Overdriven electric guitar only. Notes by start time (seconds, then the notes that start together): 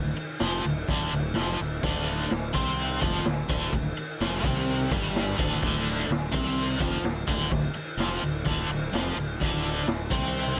Already playing: D2
0.17 muted overdriven electric guitar stroke
0.40 F2 F3
0.64 D2
0.90 D2 D3
1.12 D2
1.34 F2 F3
1.59 D2
1.83 D2 D3
2.32 D2
2.53 C3 C4
3.01 F2 F3
3.26 D2
3.48 D2 D3
3.74 D2
3.97 muted overdriven electric guitar stroke
4.21 F2 F3
4.45 C3 C4
4.92 G2 G3
5.37 D2 D3
5.61 D2 D3
6.08 D2
6.32 C3 C4
6.80 F2 F3
7.03 D2
7.28 D2 D3
7.51 D2
7.75 muted overdriven electric guitar stroke
7.98 F2 F3
8.23 D2
8.45 D2 D3
8.71 D2
8.93 F2 F3
9.16 D2
9.40 D2 D3
9.88 D2
10.10 C3 C4